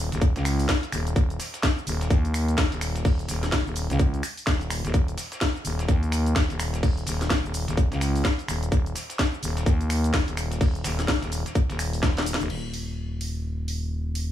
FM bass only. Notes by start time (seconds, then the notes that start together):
Already playing: D#1
0.12 D#1
0.36 C#2
0.93 D#1
1.16 D#1
1.87 D#1
2.10 D#2
2.58 D#1
2.72 D#1
3.05 D#1
3.29 D#1
3.67 D#1
3.90 C#2
4.47 D#1
4.85 D#1
4.94 D#1
5.65 D#1
5.89 D#2
6.36 D#1
6.50 D#1
6.83 D#1
7.07 D#1
7.45 D#1
7.68 D#1
7.92 C#2
8.48 D#1
8.72 D#1
9.43 D#1
9.66 D#2
10.14 D#1
10.28 D#1
10.61 D#1
10.84 D#1
11.22 D#1
11.70 D#1
12.03 D#1
12.41 D#1
12.50 D#1